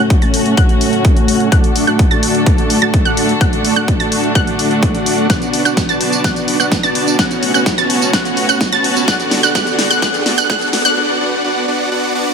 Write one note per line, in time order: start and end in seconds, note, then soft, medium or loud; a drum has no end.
0.00 0.16 A3 medium
0.00 1.50 A3 medium
0.00 0.16 C#4 medium
0.00 1.50 C#4 medium
0.00 0.16 F#4 medium
0.00 1.50 F#4 medium
0.00 0.16 C#5 medium
0.00 0.16 F#5 medium
0.00 0.16 F#6 medium
0.00 riser medium
0.10 kick loud
0.10 closed hi-hat medium
0.22 0.55 A3 medium
0.22 0.55 C#4 medium
0.22 0.55 F#4 medium
0.22 0.55 C#5 medium
0.22 0.55 A5 medium
0.22 0.55 A6 medium
0.22 closed hi-hat soft
0.34 0.50 F#1 medium
0.34 open hi-hat loud
0.46 closed hi-hat soft
0.57 1.49 F#4 medium
0.57 1.49 F#5 loud
0.57 1.49 F#6 loud
0.57 kick loud
0.57 closed hi-hat medium
0.69 closed hi-hat soft
0.81 0.97 F#1 medium
0.81 open hi-hat loud
0.93 closed hi-hat soft
1.05 kick loud
1.05 closed hi-hat medium
1.17 closed hi-hat soft
1.28 1.45 F#1 medium
1.28 open hi-hat loud
1.40 closed hi-hat soft
1.52 1.68 D2 loud
1.52 5.26 D3 medium
1.52 7.15 D4 medium
1.52 7.15 F#4 medium
1.52 5.26 A4 medium
1.52 1.85 F#6 medium
1.52 kick loud
1.52 closed hi-hat medium
1.64 closed hi-hat soft
1.76 1.92 D2 medium
1.76 open hi-hat loud
1.87 2.05 A3 medium
1.87 2.05 D4 medium
1.87 2.05 F#4 medium
1.87 2.05 D5 medium
1.87 2.05 F#5 medium
1.87 2.05 F#6 medium
1.87 closed hi-hat soft
1.99 2.15 D2 loud
1.99 kick loud
1.99 closed hi-hat medium
2.11 2.79 A3 medium
2.11 2.79 D4 medium
2.11 2.79 F#4 medium
2.11 2.79 D5 medium
2.11 2.79 A5 loud
2.11 2.79 A6 medium
2.11 closed hi-hat soft
2.23 2.39 D2 medium
2.23 open hi-hat loud
2.35 closed hi-hat soft
2.46 kick loud
2.46 closed hi-hat medium
2.58 closed hi-hat soft
2.70 2.86 D2 medium
2.70 open hi-hat loud
2.82 3.03 A3 medium
2.82 3.03 D4 medium
2.82 3.03 F#4 medium
2.82 3.03 D5 medium
2.82 3.03 A5 medium
2.82 3.03 A6 loud
2.82 closed hi-hat soft
2.94 3.10 D2 loud
2.94 kick loud
2.94 closed hi-hat medium
3.05 3.33 A3 loud
3.05 3.33 D4 medium
3.05 3.33 F#4 medium
3.05 3.33 D5 medium
3.05 3.33 F#5 loud
3.05 3.33 F#6 loud
3.05 closed hi-hat soft
3.17 3.34 D2 medium
3.17 open hi-hat loud
3.29 closed hi-hat soft
3.41 3.57 D2 loud
3.41 3.74 A3 medium
3.41 3.74 D4 medium
3.41 3.74 F#4 medium
3.41 3.74 D5 medium
3.41 3.74 F#5 medium
3.41 3.74 F#6 medium
3.41 kick loud
3.41 closed hi-hat medium
3.53 closed hi-hat soft
3.65 3.81 D2 medium
3.65 open hi-hat loud
3.76 3.94 A3 medium
3.76 3.94 D4 medium
3.76 3.94 F#4 medium
3.76 3.94 D5 medium
3.76 3.94 F#5 medium
3.76 3.94 F#6 medium
3.76 closed hi-hat soft
3.88 4.04 D2 loud
3.88 kick loud
3.88 closed hi-hat medium
4.00 4.33 A3 medium
4.00 4.33 D4 medium
4.00 4.33 F#4 medium
4.00 4.33 D5 medium
4.00 4.33 A5 medium
4.00 4.33 A6 medium
4.00 closed hi-hat soft
4.12 4.28 D2 loud
4.12 open hi-hat loud
4.24 closed hi-hat soft
4.35 4.43 D2 medium
4.35 5.27 A3 loud
4.35 5.27 D4 medium
4.35 5.27 F#4 medium
4.35 5.27 F#5 loud
4.35 5.27 F#6 loud
4.35 kick loud
4.35 closed hi-hat medium
4.47 closed hi-hat soft
4.59 4.67 A1 medium
4.59 open hi-hat loud
4.71 closed hi-hat soft
4.83 4.99 D2 medium
4.83 kick loud
4.83 closed hi-hat medium
4.95 closed hi-hat soft
5.06 open hi-hat loud
5.18 closed hi-hat soft
5.30 5.46 B1 loud
5.30 7.17 B3 medium
5.30 5.62 F#6 medium
5.30 kick loud
5.30 snare soft
5.30 closed hi-hat medium
5.30 tambourine medium
5.42 closed hi-hat soft
5.42 tambourine soft
5.53 5.70 B1 medium
5.53 open hi-hat loud
5.65 5.83 B3 medium
5.65 5.83 D4 medium
5.65 5.83 F#4 medium
5.65 5.83 D5 medium
5.65 5.83 F#5 medium
5.65 5.83 F#6 medium
5.65 closed hi-hat soft
5.65 tambourine medium
5.77 5.93 B1 loud
5.77 kick loud
5.77 snare soft
5.77 closed hi-hat medium
5.77 tambourine medium
5.89 6.23 B3 medium
5.89 6.23 D4 medium
5.89 6.23 F#4 medium
5.89 6.23 D5 medium
5.89 6.23 A5 medium
5.89 6.23 A6 medium
5.89 closed hi-hat soft
5.89 tambourine soft
6.01 6.17 B1 medium
6.01 open hi-hat loud
6.12 closed hi-hat soft
6.12 tambourine medium
6.24 6.57 B3 medium
6.24 6.57 D4 medium
6.24 6.57 F#4 medium
6.24 6.57 D5 medium
6.24 6.57 F#6 medium
6.24 kick loud
6.24 snare medium
6.24 closed hi-hat medium
6.24 tambourine medium
6.36 closed hi-hat soft
6.36 tambourine soft
6.48 6.64 B1 medium
6.48 open hi-hat loud
6.60 6.77 B3 medium
6.60 6.77 D4 medium
6.60 6.77 F#4 medium
6.60 6.77 D5 medium
6.60 6.77 F#5 medium
6.60 6.77 F#6 medium
6.60 closed hi-hat soft
6.60 tambourine medium
6.72 6.88 B1 loud
6.72 kick loud
6.72 snare medium
6.72 closed hi-hat medium
6.72 tambourine medium
6.83 7.17 B3 medium
6.83 7.17 D4 medium
6.83 7.17 F#4 medium
6.83 7.17 D5 medium
6.83 7.17 A5 loud
6.83 7.17 A6 medium
6.83 closed hi-hat soft
6.83 tambourine soft
6.95 7.11 B1 loud
6.95 open hi-hat loud
7.07 closed hi-hat soft
7.07 tambourine medium
7.19 9.06 A3 medium
7.19 9.06 C#4 medium
7.19 7.52 C#4 medium
7.19 7.52 F#4 medium
7.19 10.93 F#4 medium
7.19 7.52 C#5 medium
7.19 7.52 F#6 medium
7.19 kick loud
7.19 snare medium
7.19 closed hi-hat medium
7.19 tambourine medium
7.31 closed hi-hat soft
7.31 tambourine soft
7.42 7.59 F#1 medium
7.42 open hi-hat loud
7.54 7.71 B3 medium
7.54 7.72 C#4 medium
7.54 7.71 F#4 medium
7.54 7.71 C#5 medium
7.54 7.71 F#5 medium
7.54 7.71 F#6 medium
7.54 closed hi-hat soft
7.54 tambourine medium
7.66 kick loud
7.66 snare medium
7.66 closed hi-hat medium
7.66 tambourine medium
7.78 8.12 B3 medium
7.78 8.12 C#4 medium
7.78 8.12 F#4 medium
7.78 8.12 C#5 medium
7.78 8.12 A5 medium
7.78 8.12 A6 medium
7.78 closed hi-hat soft
7.78 tambourine soft
7.90 8.06 F#1 loud
7.90 open hi-hat loud
8.02 closed hi-hat soft
8.02 tambourine medium
8.13 8.46 B3 medium
8.13 8.46 F#4 medium
8.13 8.46 F#5 medium
8.13 8.46 F#6 medium
8.13 kick loud
8.13 snare medium
8.13 closed hi-hat medium
8.13 tambourine medium
8.25 closed hi-hat soft
8.25 tambourine soft
8.37 8.53 F#1 medium
8.37 open hi-hat loud
8.49 8.66 B3 medium
8.49 8.66 C#4 medium
8.49 8.66 F#4 medium
8.49 8.66 C#5 medium
8.49 8.66 F#5 medium
8.49 8.66 F#6 medium
8.49 closed hi-hat soft
8.49 tambourine medium
8.61 kick loud
8.61 snare medium
8.61 closed hi-hat medium
8.61 tambourine medium
8.72 9.06 B3 medium
8.72 9.06 C#4 medium
8.72 9.06 F#4 medium
8.72 9.06 C#5 medium
8.72 9.06 A5 loud
8.72 9.06 A6 loud
8.72 closed hi-hat soft
8.72 tambourine soft
8.84 9.00 F#1 medium
8.84 open hi-hat loud
8.96 closed hi-hat soft
8.96 tambourine medium
9.08 9.24 D2 loud
9.08 10.95 D3 medium
9.08 9.41 B3 medium
9.08 10.95 D4 medium
9.08 9.41 D4 medium
9.08 9.41 F#4 medium
9.08 10.95 A4 medium
9.08 9.41 D5 medium
9.08 9.41 F#5 medium
9.08 9.40 F#6 medium
9.08 kick loud
9.08 snare medium
9.08 closed hi-hat medium
9.08 tambourine medium
9.20 closed hi-hat soft
9.20 tambourine soft
9.31 9.48 D2 medium
9.31 snare medium
9.31 open hi-hat loud
9.43 9.53 B3 medium
9.43 9.53 D4 medium
9.43 9.53 F#4 medium
9.43 9.53 D5 medium
9.43 9.53 F#5 medium
9.43 9.53 F#6 medium
9.43 closed hi-hat soft
9.43 tambourine medium
9.55 9.71 D2 loud
9.55 9.88 B3 medium
9.55 9.88 D4 medium
9.55 9.88 F#4 medium
9.55 9.88 D5 medium
9.55 9.88 F#5 medium
9.55 9.88 F#6 medium
9.55 kick loud
9.55 snare medium
9.55 closed hi-hat medium
9.55 tambourine medium
9.67 closed hi-hat soft
9.67 tambourine soft
9.79 9.95 D2 medium
9.79 snare medium
9.79 open hi-hat loud
9.91 10.01 B3 medium
9.91 10.01 D4 medium
9.91 10.01 F#4 medium
9.91 10.01 D5 medium
9.91 10.01 F#5 medium
9.91 10.00 F#6 medium
9.91 tambourine medium
10.02 10.35 B3 medium
10.02 10.35 D4 medium
10.02 10.35 F#4 medium
10.02 10.35 D5 medium
10.02 10.35 F#5 medium
10.02 10.35 F#6 medium
10.02 kick loud
10.02 snare medium
10.02 closed hi-hat medium
10.02 tambourine medium
10.14 closed hi-hat soft
10.14 tambourine soft
10.26 10.42 D2 medium
10.26 snare medium
10.26 open hi-hat loud
10.38 10.48 B3 medium
10.38 10.48 D4 medium
10.38 10.48 F#4 medium
10.38 10.48 D5 medium
10.38 10.48 F#5 medium
10.38 10.48 F#6 medium
10.38 closed hi-hat soft
10.38 tambourine medium
10.50 10.66 D2 loud
10.50 10.82 B3 medium
10.50 10.82 D4 medium
10.50 10.82 F#4 medium
10.50 10.82 D5 medium
10.50 10.82 F#5 medium
10.50 10.82 F#6 medium
10.50 kick loud
10.50 snare medium
10.50 closed hi-hat medium
10.50 tambourine medium
10.61 closed hi-hat soft
10.61 tambourine soft
10.73 10.90 D2 loud
10.73 snare medium
10.73 open hi-hat loud
10.85 10.95 B3 medium
10.85 10.95 D4 medium
10.85 10.95 F#4 medium
10.85 10.95 D5 medium
10.85 10.95 F#5 medium
10.85 10.95 F#6 medium
10.85 closed hi-hat soft
10.85 tambourine medium
10.97 11.19 B3 medium
10.97 11.19 D4 medium
10.97 11.19 F#4 medium
10.97 11.19 D5 medium
10.97 11.19 F#5 medium
11.21 11.42 B3 medium
11.21 11.42 D4 medium
11.21 11.42 F#4 medium
11.21 11.42 D5 medium
11.21 11.42 F#5 medium
11.44 11.66 B3 medium
11.44 11.66 D4 medium
11.44 11.66 F#4 medium
11.44 11.66 D5 medium
11.44 11.66 F#5 medium
11.68 11.90 B3 medium
11.68 11.90 D4 medium
11.68 11.90 F#4 medium
11.68 11.90 D5 medium
11.68 11.90 F#5 medium
11.91 12.13 B3 medium
11.91 12.13 D4 medium
11.91 12.13 F#4 medium
11.91 12.13 D5 medium
11.91 12.13 F#5 medium
11.91 swell medium
12.15 12.34 B3 medium
12.15 12.34 D4 medium
12.15 12.34 F#4 medium
12.15 12.34 D5 medium
12.15 12.34 F#5 medium